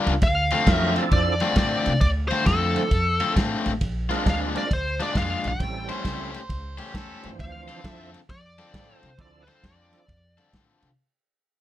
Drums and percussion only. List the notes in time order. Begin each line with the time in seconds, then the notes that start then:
0.07 snare, ride
0.22 kick, snare, ride
0.51 snare, ride
0.67 kick, snare, ride
0.96 snare, ride
1.11 kick, snare, ride
1.40 snare, ride
1.56 kick, snare, ride
1.86 snare, ride
2.01 kick, snare, ride
2.31 snare, ride
2.46 kick, snare, ride
2.76 snare, ride
2.91 kick, snare, ride
3.20 snare, ride
3.36 kick, snare, ride
3.66 snare, ride
3.81 kick, snare, ride
4.11 snare, ride
4.26 kick, snare, ride
4.56 snare, ride
4.71 kick, snare, ride
5.00 snare, ride
5.15 kick, snare, ride
5.44 snare, ride
5.60 kick, snare, ride
5.89 snare, ride
6.05 kick, snare, ride
6.34 snare, ride
6.49 kick, snare, ride
6.78 snare, ride
6.94 kick, snare, ride
7.24 snare, ride
7.39 kick, snare, ride
7.69 snare, ride
7.84 kick, snare, ride
8.14 snare, ride
8.29 kick, snare, ride
8.58 snare, ride
8.74 kick, snare, ride
9.03 snare, ride
9.19 kick, snare, ride
9.48 snare, ride
9.64 kick, snare, ride
9.93 snare, ride
10.08 kick, snare, ride
10.38 snare, ride
10.53 kick, snare, ride
10.83 snare, ride